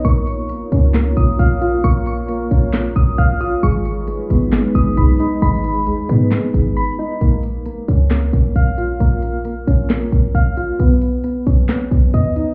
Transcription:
<<
  \new Staff \with { instrumentName = "Synth bell" } { \time 4/4 \key bes \phrygian \tempo 4 = 134 des'''4 r4. ees'''4. | des'''4 r4. ees'''8 f'''8 ees'''8 | des'''4 r4. ees'''4. | ces'''4 r2. |
r1 | r1 | r1 | }
  \new Staff \with { instrumentName = "Ambient pad" } { \time 4/4 \key bes \phrygian <bes f' des''>1~ | <bes f' des''>1 | <aes ees' ces''>1~ | <aes ees' ces''>1 |
r1 | r1 | r1 | }
  \new Staff \with { instrumentName = "Synth keys" } { \time 4/4 \key bes \phrygian bes4 bes8 des'8 bes4 f''8 f'8 | bes4 bes8 des'8 bes4 f''8 f'8 | aes4 aes8 ces'8 aes4 ces'''8 ees'8 | aes4 aes8 ces'8 aes4 ces'''8 ees'8 |
bes4 bes8 des'8 bes4 f''8 f'8 | bes4 bes8 des'8 bes4 f''8 f'8 | b4 b8 cis'8 b4 dis''8 dis'8 | }
  \new Staff \with { instrumentName = "808-style bass" } { \clef bass \time 4/4 \key bes \phrygian bes,,4 r8 des,4 bes,,8 bes,,4 | bes,,4. bes,,4 bes,,8 bes,,8 r8 | aes,,4 r8 aes,,8 r8 aes,,8 ces,8 r8 | aes,,4 ees,8 aes,4 aes,,8 r4 |
bes,,4 r8 des,4 bes,,8 bes,,4 | bes,,4. bes,,4 bes,,8 bes,,8 r8 | b,,4 r8 b,,8 r8 b,,8 dis,8 r8 | }
  \new DrumStaff \with { instrumentName = "Drums" } \drummode { \time 4/4 hh8 hh8 hh8 hh8 <hc hh sn>8 hh8 hh8 hh8 | hh8 hh8 hh8 hh8 <hc hh sn>8 hh8 hh8 hh8 | hh8 hh8 hh8 hh8 <hc hh sn>8 hh8 hh8 hh8 | hh8 hh8 hh8 hh8 <hc hh sn>8 hh8 r4 |
hh8 hh8 hh8 hh8 <hc hh sn>8 hh8 hh8 hh8 | hh8 hh8 hh8 hh8 <hc hh sn>8 hh8 hh8 hh8 | hh8 hh8 hh8 hh8 <hc hh sn>8 hh8 hh8 hh8 | }
>>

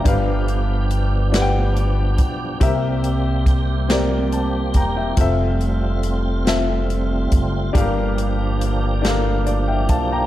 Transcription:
<<
  \new Staff \with { instrumentName = "Grand piano" } { \time 6/8 \key g \dorian \tempo 4. = 47 << { <e'' g''>16 r2 r8. | r2 a''8 <g'' bes''>16 <e'' g''>16~ | <e'' g''>16 r2 r8. | r2 d''16 <e'' g''>16 <f'' a''>16 <g'' bes''>16 | } \\ { <d' g' b' f''>4~ <d' g' b' f''>16 r16 <d' g' b' ges'' g''>4~ <d' g' b' ges'' g''>16 r16 | <c' g' bes' e''>4~ <c' g' bes' e''>16 r16 <c' g' bes' d''>4~ <c' g' bes' d''>16 r16 | <c' f' a' e''>4~ <c' f' a' e''>16 r16 <c' f' a' e''>4~ <c' f' a' e''>16 r16 | <d' g' a' bes' f''>4~ <d' g' a' bes' f''>16 r16 <d' g' a' bes' f''>4~ <d' g' a' bes' f''>16 r16 | } >> }
  \new Staff \with { instrumentName = "Grand piano" } { \clef bass \time 6/8 \key g \dorian g,4. r4. | c4. r4. | r2. | g,4. r4. | }
  \new Staff \with { instrumentName = "Tonewheel organ" } { \time 6/8 \key g \dorian <b g'>2. | <bes g'>2. | <a f'>2. | <bes g'>2. | }
  \new Staff \with { instrumentName = "Tonewheel organ" } { \time 6/8 \key g \dorian <f d'>2. | <g c'>2.~ | <g c'>2. | <f d'>2. | }
  \new Staff \with { instrumentName = "Upright bass" } { \clef bass \time 6/8 \key g \dorian g,,2~ g,,8 b,,8 | c,2~ c,8 e,,8 | f,,2~ f,,8 ges,,8 | g,,2~ g,,8 b,,8 | }
  \new DrumStaff \with { instrumentName = "Drums" } \drummode { \time 6/8 <hh bd>8 hh8 hh8 <hh sn>8 hh8 <hh bd>8 | <hh bd>8 hh8 <hh bd>8 <hh sn>8 hh8 <hh bd>8 | <hh bd>8 hh8 hh8 <hh sn>8 hh8 <hh bd>8 | <hh bd>8 hh8 hh8 <hh sn>8 hh8 <hh bd>8 | }
>>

